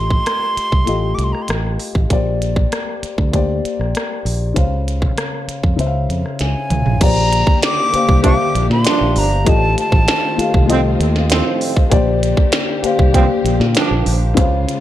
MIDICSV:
0, 0, Header, 1, 8, 480
1, 0, Start_track
1, 0, Key_signature, -2, "major"
1, 0, Tempo, 613497
1, 1643, Time_signature, 4, 2, 24, 8
1, 11581, End_track
2, 0, Start_track
2, 0, Title_t, "Flute"
2, 0, Program_c, 0, 73
2, 0, Note_on_c, 0, 84, 104
2, 897, Note_on_c, 0, 86, 67
2, 909, Note_off_c, 0, 84, 0
2, 971, Note_on_c, 0, 84, 73
2, 982, Note_off_c, 0, 86, 0
2, 1037, Note_on_c, 0, 82, 72
2, 1049, Note_off_c, 0, 84, 0
2, 1112, Note_on_c, 0, 84, 71
2, 1124, Note_off_c, 0, 82, 0
2, 1173, Note_off_c, 0, 84, 0
2, 5015, Note_on_c, 0, 80, 89
2, 5493, Note_on_c, 0, 82, 110
2, 5505, Note_off_c, 0, 80, 0
2, 5969, Note_off_c, 0, 82, 0
2, 5978, Note_on_c, 0, 86, 114
2, 6421, Note_off_c, 0, 86, 0
2, 6457, Note_on_c, 0, 86, 97
2, 6787, Note_off_c, 0, 86, 0
2, 6822, Note_on_c, 0, 84, 95
2, 7187, Note_on_c, 0, 82, 86
2, 7198, Note_off_c, 0, 84, 0
2, 7425, Note_on_c, 0, 81, 92
2, 7437, Note_off_c, 0, 82, 0
2, 7655, Note_off_c, 0, 81, 0
2, 7666, Note_on_c, 0, 81, 88
2, 8344, Note_off_c, 0, 81, 0
2, 11581, End_track
3, 0, Start_track
3, 0, Title_t, "Grand piano"
3, 0, Program_c, 1, 0
3, 0, Control_c, 1, 64, 127
3, 0, Note_on_c, 1, 57, 58
3, 0, Note_on_c, 1, 65, 57
3, 0, Note_on_c, 1, 67, 52
3, 0, Note_on_c, 1, 75, 65
3, 434, Note_off_c, 1, 57, 0
3, 439, Note_off_c, 1, 65, 0
3, 444, Note_off_c, 1, 67, 0
3, 449, Note_off_c, 1, 75, 0
3, 667, Note_on_c, 1, 57, 76
3, 675, Note_on_c, 1, 65, 69
3, 687, Note_on_c, 1, 67, 73
3, 693, Note_on_c, 1, 75, 83
3, 1394, Note_off_c, 1, 57, 0
3, 1398, Note_off_c, 1, 65, 0
3, 1404, Note_off_c, 1, 67, 0
3, 1408, Note_off_c, 1, 75, 0
3, 1637, Note_on_c, 1, 58, 72
3, 1646, Note_on_c, 1, 67, 65
3, 1654, Control_c, 1, 64, 0
3, 1654, Note_on_c, 1, 72, 68
3, 1665, Note_on_c, 1, 74, 83
3, 1801, Control_c, 1, 64, 127
3, 2360, Note_off_c, 1, 58, 0
3, 2364, Note_off_c, 1, 67, 0
3, 2369, Note_off_c, 1, 72, 0
3, 2374, Note_off_c, 1, 74, 0
3, 2596, Note_on_c, 1, 58, 78
3, 2607, Note_on_c, 1, 67, 71
3, 2614, Note_on_c, 1, 72, 72
3, 2624, Note_on_c, 1, 74, 81
3, 3320, Note_off_c, 1, 58, 0
3, 3325, Note_off_c, 1, 67, 0
3, 3329, Note_off_c, 1, 72, 0
3, 3334, Note_off_c, 1, 74, 0
3, 3552, Note_on_c, 1, 49, 70
3, 3563, Note_on_c, 1, 61, 64
3, 3572, Note_on_c, 1, 72, 68
3, 3574, Control_c, 1, 64, 0
3, 3582, Note_on_c, 1, 77, 77
3, 3693, Control_c, 1, 64, 127
3, 4278, Note_off_c, 1, 49, 0
3, 4284, Note_off_c, 1, 61, 0
3, 4288, Note_off_c, 1, 72, 0
3, 4293, Note_off_c, 1, 77, 0
3, 4510, Note_on_c, 1, 49, 78
3, 4517, Note_on_c, 1, 61, 66
3, 4525, Note_on_c, 1, 72, 70
3, 4538, Note_on_c, 1, 76, 69
3, 4583, Note_off_c, 1, 76, 0
3, 4589, Note_on_c, 1, 77, 86
3, 5237, Note_off_c, 1, 49, 0
3, 5241, Note_off_c, 1, 61, 0
3, 5245, Note_off_c, 1, 72, 0
3, 5277, Note_off_c, 1, 77, 0
3, 5472, Note_on_c, 1, 58, 64
3, 5482, Note_on_c, 1, 67, 60
3, 5494, Note_on_c, 1, 72, 62
3, 5496, Control_c, 1, 64, 0
3, 5504, Note_on_c, 1, 74, 76
3, 5620, Control_c, 1, 64, 127
3, 6018, Note_off_c, 1, 58, 0
3, 6023, Note_off_c, 1, 67, 0
3, 6029, Note_off_c, 1, 72, 0
3, 6034, Note_off_c, 1, 74, 0
3, 6187, Note_on_c, 1, 58, 65
3, 6200, Note_on_c, 1, 67, 60
3, 6208, Note_on_c, 1, 72, 59
3, 6219, Note_on_c, 1, 77, 72
3, 6376, Note_off_c, 1, 58, 0
3, 6383, Note_off_c, 1, 67, 0
3, 6386, Note_off_c, 1, 72, 0
3, 6392, Note_off_c, 1, 77, 0
3, 6426, Note_on_c, 1, 58, 69
3, 6435, Note_on_c, 1, 67, 67
3, 6444, Note_on_c, 1, 72, 65
3, 6455, Note_on_c, 1, 76, 61
3, 6501, Note_off_c, 1, 76, 0
3, 6506, Note_on_c, 1, 77, 82
3, 7155, Note_off_c, 1, 58, 0
3, 7159, Note_off_c, 1, 67, 0
3, 7164, Note_off_c, 1, 72, 0
3, 7195, Note_off_c, 1, 77, 0
3, 7383, Note_on_c, 1, 57, 67
3, 7398, Note_on_c, 1, 65, 59
3, 7403, Note_on_c, 1, 67, 67
3, 7414, Note_on_c, 1, 75, 75
3, 7416, Control_c, 1, 64, 0
3, 7540, Control_c, 1, 64, 127
3, 7933, Note_off_c, 1, 57, 0
3, 7941, Note_off_c, 1, 65, 0
3, 7943, Note_off_c, 1, 67, 0
3, 7949, Note_off_c, 1, 75, 0
3, 8106, Note_on_c, 1, 57, 68
3, 8117, Note_on_c, 1, 65, 56
3, 8127, Note_on_c, 1, 67, 58
3, 8138, Note_on_c, 1, 77, 71
3, 8295, Note_off_c, 1, 57, 0
3, 8301, Note_off_c, 1, 65, 0
3, 8306, Note_off_c, 1, 67, 0
3, 8311, Note_off_c, 1, 77, 0
3, 8339, Note_on_c, 1, 57, 84
3, 8351, Note_on_c, 1, 65, 80
3, 8360, Note_on_c, 1, 67, 78
3, 8369, Note_on_c, 1, 75, 96
3, 9071, Note_off_c, 1, 57, 0
3, 9077, Note_off_c, 1, 65, 0
3, 9081, Note_off_c, 1, 67, 0
3, 9086, Note_off_c, 1, 75, 0
3, 9304, Note_on_c, 1, 58, 86
3, 9313, Note_on_c, 1, 67, 73
3, 9323, Note_on_c, 1, 72, 74
3, 9333, Note_on_c, 1, 74, 90
3, 9334, Control_c, 1, 64, 0
3, 9456, Control_c, 1, 64, 127
3, 9853, Note_off_c, 1, 58, 0
3, 9858, Note_off_c, 1, 67, 0
3, 9863, Note_off_c, 1, 72, 0
3, 9868, Note_off_c, 1, 74, 0
3, 10027, Note_on_c, 1, 58, 76
3, 10033, Note_on_c, 1, 67, 66
3, 10047, Note_on_c, 1, 72, 69
3, 10054, Note_on_c, 1, 77, 88
3, 10215, Note_off_c, 1, 58, 0
3, 10218, Note_off_c, 1, 67, 0
3, 10225, Note_off_c, 1, 72, 0
3, 10228, Note_off_c, 1, 77, 0
3, 10263, Note_on_c, 1, 58, 82
3, 10276, Note_on_c, 1, 67, 84
3, 10285, Note_on_c, 1, 72, 77
3, 10293, Note_on_c, 1, 77, 91
3, 10992, Note_off_c, 1, 58, 0
3, 10998, Note_off_c, 1, 67, 0
3, 11003, Note_off_c, 1, 72, 0
3, 11007, Note_off_c, 1, 77, 0
3, 11225, Note_on_c, 1, 49, 87
3, 11235, Note_on_c, 1, 61, 73
3, 11244, Note_on_c, 1, 72, 74
3, 11253, Control_c, 1, 64, 0
3, 11256, Note_on_c, 1, 77, 85
3, 11397, Control_c, 1, 64, 127
3, 11581, Note_off_c, 1, 49, 0
3, 11581, Note_off_c, 1, 61, 0
3, 11581, Note_off_c, 1, 72, 0
3, 11581, Note_off_c, 1, 77, 0
3, 11581, End_track
4, 0, Start_track
4, 0, Title_t, "String section"
4, 0, Program_c, 2, 48
4, 5480, Note_on_c, 2, 67, 87
4, 5482, Note_on_c, 2, 58, 72
4, 5485, Note_on_c, 2, 50, 79
4, 5486, Note_on_c, 2, 72, 70
4, 7384, Note_off_c, 2, 67, 0
4, 7385, Note_off_c, 2, 58, 0
4, 7386, Note_off_c, 2, 50, 0
4, 7409, Note_on_c, 2, 65, 83
4, 7412, Note_on_c, 2, 57, 70
4, 7413, Note_on_c, 2, 51, 79
4, 9307, Note_off_c, 2, 65, 0
4, 9309, Note_off_c, 2, 51, 0
4, 9309, Note_off_c, 2, 57, 0
4, 9323, Note_on_c, 2, 67, 84
4, 9326, Note_on_c, 2, 58, 72
4, 9329, Note_on_c, 2, 50, 74
4, 11223, Note_off_c, 2, 67, 0
4, 11224, Note_off_c, 2, 58, 0
4, 11226, Note_off_c, 2, 50, 0
4, 11243, Note_on_c, 2, 65, 88
4, 11244, Note_on_c, 2, 49, 75
4, 11247, Note_on_c, 2, 56, 68
4, 11581, Note_off_c, 2, 49, 0
4, 11581, Note_off_c, 2, 56, 0
4, 11581, Note_off_c, 2, 65, 0
4, 11581, Note_off_c, 2, 72, 0
4, 11581, End_track
5, 0, Start_track
5, 0, Title_t, "Trombone section"
5, 0, Program_c, 3, 61
5, 6442, Note_on_c, 3, 43, 88
5, 6442, Note_on_c, 3, 62, 92
5, 6443, Note_on_c, 3, 53, 83
5, 6520, Note_off_c, 3, 43, 0
5, 6520, Note_off_c, 3, 53, 0
5, 6520, Note_off_c, 3, 62, 0
5, 6928, Note_on_c, 3, 53, 80
5, 6928, Note_on_c, 3, 62, 91
5, 6929, Note_on_c, 3, 43, 81
5, 7269, Note_off_c, 3, 53, 0
5, 7269, Note_off_c, 3, 62, 0
5, 7270, Note_off_c, 3, 43, 0
5, 8367, Note_on_c, 3, 45, 83
5, 8367, Note_on_c, 3, 53, 80
5, 8367, Note_on_c, 3, 60, 95
5, 8443, Note_off_c, 3, 45, 0
5, 8443, Note_off_c, 3, 53, 0
5, 8443, Note_off_c, 3, 60, 0
5, 8841, Note_on_c, 3, 45, 89
5, 8842, Note_on_c, 3, 60, 93
5, 8844, Note_on_c, 3, 53, 82
5, 9184, Note_off_c, 3, 45, 0
5, 9185, Note_off_c, 3, 60, 0
5, 9186, Note_off_c, 3, 53, 0
5, 10282, Note_on_c, 3, 43, 89
5, 10282, Note_on_c, 3, 60, 97
5, 10284, Note_on_c, 3, 53, 85
5, 10359, Note_off_c, 3, 43, 0
5, 10359, Note_off_c, 3, 60, 0
5, 10360, Note_off_c, 3, 53, 0
5, 10765, Note_on_c, 3, 43, 84
5, 10766, Note_on_c, 3, 53, 88
5, 10766, Note_on_c, 3, 62, 93
5, 11106, Note_off_c, 3, 43, 0
5, 11106, Note_off_c, 3, 53, 0
5, 11106, Note_off_c, 3, 62, 0
5, 11581, End_track
6, 0, Start_track
6, 0, Title_t, "Fingered electric bass"
6, 0, Program_c, 4, 33
6, 0, Note_on_c, 4, 33, 87
6, 153, Note_off_c, 4, 33, 0
6, 567, Note_on_c, 4, 36, 79
6, 673, Note_off_c, 4, 36, 0
6, 687, Note_on_c, 4, 33, 87
6, 901, Note_off_c, 4, 33, 0
6, 925, Note_on_c, 4, 36, 91
6, 1032, Note_off_c, 4, 36, 0
6, 1165, Note_on_c, 4, 33, 81
6, 1379, Note_off_c, 4, 33, 0
6, 1526, Note_on_c, 4, 33, 78
6, 1632, Note_off_c, 4, 33, 0
6, 1647, Note_on_c, 4, 34, 87
6, 2076, Note_off_c, 4, 34, 0
6, 2489, Note_on_c, 4, 38, 78
6, 2810, Note_off_c, 4, 38, 0
6, 2968, Note_on_c, 4, 34, 73
6, 3074, Note_off_c, 4, 34, 0
6, 3327, Note_on_c, 4, 34, 79
6, 3541, Note_off_c, 4, 34, 0
6, 3571, Note_on_c, 4, 37, 90
6, 3999, Note_off_c, 4, 37, 0
6, 4409, Note_on_c, 4, 41, 79
6, 4515, Note_off_c, 4, 41, 0
6, 4524, Note_on_c, 4, 37, 85
6, 4740, Note_off_c, 4, 37, 0
6, 4765, Note_on_c, 4, 41, 87
6, 4873, Note_off_c, 4, 41, 0
6, 5010, Note_on_c, 4, 37, 79
6, 5116, Note_off_c, 4, 37, 0
6, 5248, Note_on_c, 4, 37, 84
6, 5355, Note_off_c, 4, 37, 0
6, 5371, Note_on_c, 4, 34, 75
6, 5476, Note_off_c, 4, 34, 0
6, 5485, Note_on_c, 4, 34, 106
6, 5808, Note_off_c, 4, 34, 0
6, 6325, Note_on_c, 4, 36, 90
6, 6541, Note_off_c, 4, 36, 0
6, 6688, Note_on_c, 4, 34, 94
6, 6795, Note_off_c, 4, 34, 0
6, 6808, Note_on_c, 4, 46, 95
6, 6915, Note_off_c, 4, 46, 0
6, 7049, Note_on_c, 4, 34, 84
6, 7155, Note_off_c, 4, 34, 0
6, 7168, Note_on_c, 4, 31, 90
6, 7382, Note_off_c, 4, 31, 0
6, 7404, Note_on_c, 4, 33, 104
6, 7620, Note_off_c, 4, 33, 0
6, 7764, Note_on_c, 4, 33, 86
6, 7872, Note_off_c, 4, 33, 0
6, 8246, Note_on_c, 4, 36, 89
6, 8569, Note_off_c, 4, 36, 0
6, 8603, Note_on_c, 4, 39, 90
6, 8927, Note_off_c, 4, 39, 0
6, 9324, Note_on_c, 4, 34, 104
6, 9647, Note_off_c, 4, 34, 0
6, 10165, Note_on_c, 4, 36, 89
6, 10379, Note_off_c, 4, 36, 0
6, 10518, Note_on_c, 4, 34, 95
6, 10628, Note_off_c, 4, 34, 0
6, 10641, Note_on_c, 4, 46, 105
6, 10750, Note_off_c, 4, 46, 0
6, 10882, Note_on_c, 4, 34, 88
6, 10990, Note_off_c, 4, 34, 0
6, 11002, Note_on_c, 4, 34, 90
6, 11218, Note_off_c, 4, 34, 0
6, 11243, Note_on_c, 4, 37, 112
6, 11458, Note_off_c, 4, 37, 0
6, 11581, End_track
7, 0, Start_track
7, 0, Title_t, "Muted fingered electric bass strokes"
7, 445, Note_on_c, 9, 29, 41
7, 524, Note_off_c, 9, 29, 0
7, 2368, Note_on_c, 9, 29, 42
7, 2446, Note_off_c, 9, 29, 0
7, 2850, Note_on_c, 9, 29, 44
7, 2928, Note_off_c, 9, 29, 0
7, 4285, Note_on_c, 9, 29, 42
7, 4363, Note_off_c, 9, 29, 0
7, 6208, Note_on_c, 9, 29, 44
7, 6286, Note_off_c, 9, 29, 0
7, 8121, Note_on_c, 9, 29, 46
7, 8200, Note_off_c, 9, 29, 0
7, 10039, Note_on_c, 9, 29, 46
7, 10117, Note_off_c, 9, 29, 0
7, 11581, End_track
8, 0, Start_track
8, 0, Title_t, "Drums"
8, 82, Note_on_c, 9, 36, 80
8, 160, Note_off_c, 9, 36, 0
8, 206, Note_on_c, 9, 42, 73
8, 210, Note_on_c, 9, 37, 95
8, 284, Note_off_c, 9, 42, 0
8, 288, Note_off_c, 9, 37, 0
8, 450, Note_on_c, 9, 42, 68
8, 528, Note_off_c, 9, 42, 0
8, 565, Note_on_c, 9, 36, 82
8, 644, Note_off_c, 9, 36, 0
8, 684, Note_on_c, 9, 42, 80
8, 762, Note_off_c, 9, 42, 0
8, 928, Note_on_c, 9, 42, 55
8, 1007, Note_off_c, 9, 42, 0
8, 1053, Note_on_c, 9, 37, 32
8, 1131, Note_off_c, 9, 37, 0
8, 1159, Note_on_c, 9, 42, 70
8, 1175, Note_on_c, 9, 37, 99
8, 1237, Note_off_c, 9, 42, 0
8, 1253, Note_off_c, 9, 37, 0
8, 1404, Note_on_c, 9, 46, 60
8, 1483, Note_off_c, 9, 46, 0
8, 1526, Note_on_c, 9, 36, 82
8, 1604, Note_off_c, 9, 36, 0
8, 1645, Note_on_c, 9, 42, 82
8, 1646, Note_on_c, 9, 36, 104
8, 1723, Note_off_c, 9, 42, 0
8, 1724, Note_off_c, 9, 36, 0
8, 1892, Note_on_c, 9, 42, 60
8, 1971, Note_off_c, 9, 42, 0
8, 2005, Note_on_c, 9, 36, 86
8, 2083, Note_off_c, 9, 36, 0
8, 2130, Note_on_c, 9, 42, 78
8, 2134, Note_on_c, 9, 37, 96
8, 2208, Note_off_c, 9, 42, 0
8, 2212, Note_off_c, 9, 37, 0
8, 2372, Note_on_c, 9, 42, 67
8, 2451, Note_off_c, 9, 42, 0
8, 2489, Note_on_c, 9, 36, 78
8, 2567, Note_off_c, 9, 36, 0
8, 2609, Note_on_c, 9, 36, 88
8, 2609, Note_on_c, 9, 42, 80
8, 2687, Note_off_c, 9, 36, 0
8, 2688, Note_off_c, 9, 42, 0
8, 2858, Note_on_c, 9, 42, 55
8, 2936, Note_off_c, 9, 42, 0
8, 2981, Note_on_c, 9, 37, 32
8, 3059, Note_off_c, 9, 37, 0
8, 3090, Note_on_c, 9, 42, 70
8, 3106, Note_on_c, 9, 37, 94
8, 3168, Note_off_c, 9, 42, 0
8, 3185, Note_off_c, 9, 37, 0
8, 3334, Note_on_c, 9, 46, 59
8, 3412, Note_off_c, 9, 46, 0
8, 3570, Note_on_c, 9, 36, 99
8, 3571, Note_on_c, 9, 42, 83
8, 3648, Note_off_c, 9, 36, 0
8, 3649, Note_off_c, 9, 42, 0
8, 3818, Note_on_c, 9, 42, 62
8, 3897, Note_off_c, 9, 42, 0
8, 3927, Note_on_c, 9, 36, 84
8, 4005, Note_off_c, 9, 36, 0
8, 4049, Note_on_c, 9, 42, 77
8, 4054, Note_on_c, 9, 37, 98
8, 4128, Note_off_c, 9, 42, 0
8, 4132, Note_off_c, 9, 37, 0
8, 4293, Note_on_c, 9, 42, 65
8, 4371, Note_off_c, 9, 42, 0
8, 4409, Note_on_c, 9, 36, 82
8, 4487, Note_off_c, 9, 36, 0
8, 4531, Note_on_c, 9, 42, 77
8, 4609, Note_off_c, 9, 42, 0
8, 4773, Note_on_c, 9, 42, 54
8, 4851, Note_off_c, 9, 42, 0
8, 4895, Note_on_c, 9, 37, 31
8, 4974, Note_off_c, 9, 37, 0
8, 5001, Note_on_c, 9, 42, 67
8, 5014, Note_on_c, 9, 38, 49
8, 5080, Note_off_c, 9, 42, 0
8, 5092, Note_off_c, 9, 38, 0
8, 5245, Note_on_c, 9, 45, 80
8, 5246, Note_on_c, 9, 42, 61
8, 5323, Note_off_c, 9, 45, 0
8, 5324, Note_off_c, 9, 42, 0
8, 5365, Note_on_c, 9, 43, 78
8, 5443, Note_off_c, 9, 43, 0
8, 5484, Note_on_c, 9, 42, 85
8, 5484, Note_on_c, 9, 49, 103
8, 5485, Note_on_c, 9, 36, 118
8, 5562, Note_off_c, 9, 42, 0
8, 5563, Note_off_c, 9, 36, 0
8, 5563, Note_off_c, 9, 49, 0
8, 5732, Note_on_c, 9, 42, 70
8, 5810, Note_off_c, 9, 42, 0
8, 5844, Note_on_c, 9, 36, 93
8, 5922, Note_off_c, 9, 36, 0
8, 5966, Note_on_c, 9, 42, 86
8, 5970, Note_on_c, 9, 38, 102
8, 6044, Note_off_c, 9, 42, 0
8, 6048, Note_off_c, 9, 38, 0
8, 6210, Note_on_c, 9, 42, 69
8, 6288, Note_off_c, 9, 42, 0
8, 6327, Note_on_c, 9, 36, 89
8, 6405, Note_off_c, 9, 36, 0
8, 6446, Note_on_c, 9, 36, 99
8, 6446, Note_on_c, 9, 42, 86
8, 6524, Note_off_c, 9, 36, 0
8, 6524, Note_off_c, 9, 42, 0
8, 6693, Note_on_c, 9, 42, 66
8, 6771, Note_off_c, 9, 42, 0
8, 6814, Note_on_c, 9, 38, 34
8, 6892, Note_off_c, 9, 38, 0
8, 6921, Note_on_c, 9, 42, 80
8, 6937, Note_on_c, 9, 38, 112
8, 6999, Note_off_c, 9, 42, 0
8, 7015, Note_off_c, 9, 38, 0
8, 7165, Note_on_c, 9, 46, 67
8, 7244, Note_off_c, 9, 46, 0
8, 7406, Note_on_c, 9, 36, 113
8, 7406, Note_on_c, 9, 42, 86
8, 7484, Note_off_c, 9, 36, 0
8, 7484, Note_off_c, 9, 42, 0
8, 7651, Note_on_c, 9, 42, 68
8, 7730, Note_off_c, 9, 42, 0
8, 7763, Note_on_c, 9, 36, 98
8, 7841, Note_off_c, 9, 36, 0
8, 7885, Note_on_c, 9, 42, 81
8, 7889, Note_on_c, 9, 38, 108
8, 7963, Note_off_c, 9, 42, 0
8, 7967, Note_off_c, 9, 38, 0
8, 8131, Note_on_c, 9, 42, 75
8, 8210, Note_off_c, 9, 42, 0
8, 8247, Note_on_c, 9, 36, 84
8, 8325, Note_off_c, 9, 36, 0
8, 8369, Note_on_c, 9, 42, 86
8, 8447, Note_off_c, 9, 42, 0
8, 8611, Note_on_c, 9, 42, 59
8, 8689, Note_off_c, 9, 42, 0
8, 8730, Note_on_c, 9, 38, 36
8, 8808, Note_off_c, 9, 38, 0
8, 8839, Note_on_c, 9, 42, 80
8, 8855, Note_on_c, 9, 38, 106
8, 8917, Note_off_c, 9, 42, 0
8, 8933, Note_off_c, 9, 38, 0
8, 9085, Note_on_c, 9, 46, 68
8, 9163, Note_off_c, 9, 46, 0
8, 9205, Note_on_c, 9, 36, 93
8, 9283, Note_off_c, 9, 36, 0
8, 9323, Note_on_c, 9, 36, 110
8, 9323, Note_on_c, 9, 42, 94
8, 9401, Note_off_c, 9, 36, 0
8, 9401, Note_off_c, 9, 42, 0
8, 9569, Note_on_c, 9, 42, 68
8, 9647, Note_off_c, 9, 42, 0
8, 9680, Note_on_c, 9, 36, 95
8, 9758, Note_off_c, 9, 36, 0
8, 9797, Note_on_c, 9, 42, 90
8, 9801, Note_on_c, 9, 38, 110
8, 9875, Note_off_c, 9, 42, 0
8, 9879, Note_off_c, 9, 38, 0
8, 10045, Note_on_c, 9, 42, 76
8, 10123, Note_off_c, 9, 42, 0
8, 10163, Note_on_c, 9, 36, 89
8, 10241, Note_off_c, 9, 36, 0
8, 10283, Note_on_c, 9, 36, 99
8, 10284, Note_on_c, 9, 42, 88
8, 10361, Note_off_c, 9, 36, 0
8, 10362, Note_off_c, 9, 42, 0
8, 10528, Note_on_c, 9, 42, 62
8, 10606, Note_off_c, 9, 42, 0
8, 10649, Note_on_c, 9, 38, 34
8, 10727, Note_off_c, 9, 38, 0
8, 10756, Note_on_c, 9, 42, 78
8, 10772, Note_on_c, 9, 38, 108
8, 10834, Note_off_c, 9, 42, 0
8, 10850, Note_off_c, 9, 38, 0
8, 11002, Note_on_c, 9, 46, 65
8, 11081, Note_off_c, 9, 46, 0
8, 11243, Note_on_c, 9, 36, 109
8, 11243, Note_on_c, 9, 42, 94
8, 11322, Note_off_c, 9, 36, 0
8, 11322, Note_off_c, 9, 42, 0
8, 11490, Note_on_c, 9, 42, 67
8, 11568, Note_off_c, 9, 42, 0
8, 11581, End_track
0, 0, End_of_file